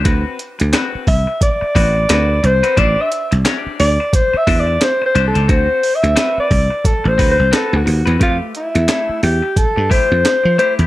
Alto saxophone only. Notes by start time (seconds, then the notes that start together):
1.08 E5
1.43 D5
2.45 C5
2.79 D5
3.01 E5
3.80 D5
4.14 C5
4.37 E5
4.60 D5
4.83 C5
5.06 C5
5.27 A4
5.50 C5
5.95 E5
6.40 D5
6.86 A4
7.08 C5
7.31 C5
7.54 A4
7.76 F#4
8.23 F4
8.56 E4
9.23 G4
9.57 A4
9.91 C5
10.59 C5